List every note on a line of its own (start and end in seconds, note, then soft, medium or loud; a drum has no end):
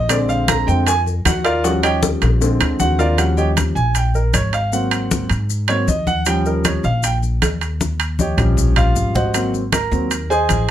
0.00 0.62 A#1 medium
0.09 0.64 D3 medium
0.09 0.64 G#3 medium
0.09 0.65 C4 medium
0.09 0.29 D5 medium
0.09 high bongo medium
0.09 high conga soft
0.09 high timbale medium
0.09 maracas medium
0.29 0.48 F5 medium
0.29 high conga soft
0.29 maracas soft
0.48 0.67 A#5 medium
0.48 high bongo medium
0.48 high conga medium
0.48 high timbale loud
0.48 maracas medium
0.66 1.22 F2 loud
0.66 0.84 D3 medium
0.66 0.85 G#3 soft
0.66 0.85 C4 medium
0.66 0.86 G5 medium
0.66 high bongo soft
0.66 high conga soft
0.66 maracas soft
0.87 0.99 G#5 loud
0.87 high bongo medium
0.87 high conga soft
0.87 high timbale medium
0.87 maracas medium
1.06 high bongo soft
1.06 high conga soft
1.06 maracas soft
1.25 2.16 D#2 medium
1.25 1.45 F#4 medium
1.25 1.44 F#5 medium
1.25 high bongo soft
1.25 low bongo medium
1.25 high conga medium
1.25 high timbale loud
1.25 maracas medium
1.44 1.64 F4 medium
1.44 1.64 A#4 medium
1.44 1.64 D5 medium
1.44 1.63 F5 loud
1.44 high bongo soft
1.44 high conga soft
1.44 high timbale medium
1.44 maracas soft
1.63 2.37 F3 medium
1.63 2.37 G3 medium
1.63 2.38 C#4 medium
1.63 1.83 F#4 medium
1.63 1.83 F#5 medium
1.63 high bongo medium
1.63 high conga soft
1.63 maracas medium
1.83 2.02 G4 medium
1.83 2.02 C#5 medium
1.83 2.02 D#5 medium
1.83 2.02 G5 loud
1.83 high conga soft
1.83 high timbale loud
1.83 maracas soft
2.03 high bongo medium
2.03 high conga loud
2.03 maracas medium
2.22 2.58 A#1 loud
2.22 high bongo medium
2.22 high conga soft
2.22 high timbale medium
2.22 maracas soft
2.41 3.14 D3 medium
2.41 3.14 G#3 soft
2.41 3.15 C4 medium
2.41 high bongo loud
2.41 high conga soft
2.41 maracas medium
2.60 2.78 D2 medium
2.60 low bongo medium
2.60 high conga soft
2.60 high timbale loud
2.60 maracas soft
2.80 3.70 D#2 medium
2.80 2.99 F#4 medium
2.80 2.98 F#5 loud
2.80 low bongo medium
2.80 high conga medium
2.80 maracas medium
2.99 3.18 F4 medium
2.99 3.18 A#4 medium
2.99 3.18 D5 medium
2.99 3.18 F5 medium
2.99 low bongo medium
2.99 maracas soft
3.17 3.73 F3 soft
3.17 3.73 G3 soft
3.17 3.73 C#4 medium
3.17 3.37 F#4 medium
3.17 3.37 F#5 medium
3.17 high conga soft
3.17 high timbale medium
3.17 maracas medium
3.37 3.49 G4 medium
3.37 3.49 C#5 medium
3.37 3.49 D#5 medium
3.37 3.49 G5 medium
3.37 high conga soft
3.37 maracas soft
3.57 high conga medium
3.57 high timbale medium
3.57 maracas medium
3.75 4.30 A#1 medium
3.75 3.94 G#5 medium
3.75 high conga soft
3.75 maracas soft
3.95 4.14 G5 medium
3.95 high conga soft
3.95 high timbale medium
3.95 maracas medium
4.14 4.34 A#4 medium
4.14 high conga soft
4.14 maracas soft
4.34 5.24 G#1 medium
4.34 4.53 C#5 medium
4.34 high conga medium
4.34 high timbale medium
4.34 maracas medium
4.53 4.72 F5 medium
4.53 high conga soft
4.53 high timbale medium
4.53 maracas soft
4.72 5.27 F#3 medium
4.72 5.27 A#3 soft
4.72 5.28 C4 medium
4.72 5.27 F#5 medium
4.72 high conga soft
4.72 maracas medium
4.91 high conga soft
4.91 high timbale medium
4.91 maracas soft
5.11 high conga medium
5.11 maracas medium
5.30 5.84 G#2 medium
5.30 high conga soft
5.30 high timbale medium
5.30 maracas soft
5.50 high conga soft
5.50 maracas medium
5.68 5.86 F#3 soft
5.68 5.86 A#3 soft
5.68 5.86 C4 medium
5.68 5.87 C#5 loud
5.68 high conga soft
5.68 high timbale medium
5.68 maracas soft
5.88 6.78 D#2 medium
5.88 6.07 D#5 medium
5.88 high conga medium
5.88 maracas medium
6.07 6.26 F#5 loud
6.07 high conga medium
6.07 maracas soft
6.26 6.81 F3 medium
6.26 6.82 G3 soft
6.26 6.82 C#4 medium
6.26 6.45 G5 loud
6.26 high conga soft
6.26 high timbale medium
6.26 maracas medium
6.46 6.65 A#4 medium
6.46 high conga soft
6.46 maracas soft
6.65 6.84 C#5 medium
6.65 high conga medium
6.65 high timbale loud
6.65 maracas medium
6.83 7.38 A#1 medium
6.83 7.03 F5 medium
6.83 high conga soft
6.83 maracas soft
7.03 7.15 G5 medium
7.03 high conga soft
7.03 high timbale medium
7.03 maracas medium
7.23 high conga soft
7.23 maracas soft
7.42 8.32 D#2 medium
7.42 high conga medium
7.42 high timbale medium
7.42 low timbale medium
7.42 maracas medium
7.61 high conga soft
7.61 high timbale medium
7.61 maracas soft
7.81 high conga medium
7.81 maracas medium
8.00 high timbale medium
8.00 maracas soft
8.19 8.73 G4 medium
8.19 8.73 C#5 medium
8.19 8.73 D#5 medium
8.19 8.73 G5 medium
8.19 high conga medium
8.19 maracas medium
8.37 8.92 A#1 loud
8.37 9.30 F3 medium
8.37 9.31 G3 soft
8.37 9.31 C#4 medium
8.37 low conga loud
8.37 high timbale medium
8.37 maracas soft
8.57 low conga medium
8.57 maracas medium
8.76 9.13 F4 medium
8.76 9.13 F5 medium
8.76 low conga medium
8.76 high timbale medium
8.76 maracas soft
8.95 9.86 G#1 medium
8.95 low conga medium
8.95 maracas medium
9.15 9.51 F#4 medium
9.15 9.51 C5 medium
9.15 9.51 D#5 medium
9.15 9.51 F#5 medium
9.15 low conga loud
9.15 maracas soft
9.34 9.60 F#3 medium
9.34 9.60 A#3 soft
9.34 9.61 C4 medium
9.34 high conga soft
9.34 high timbale medium
9.34 maracas medium
9.54 high conga soft
9.54 maracas soft
9.73 10.27 A#4 medium
9.73 10.27 A#5 medium
9.73 high conga medium
9.73 high timbale medium
9.73 maracas medium
9.91 10.45 D#2 loud
9.91 10.09 F#3 medium
9.91 10.09 A#3 soft
9.91 10.10 C4 medium
9.91 high conga soft
9.91 maracas soft
10.11 high conga soft
10.11 high timbale medium
10.11 maracas medium
10.30 10.66 G#4 medium
10.30 10.66 C5 medium
10.30 10.66 D#5 medium
10.30 10.66 G#5 loud
10.30 high conga soft
10.30 maracas soft
10.49 10.71 A1 medium
10.49 high conga medium
10.49 high timbale medium
10.49 maracas medium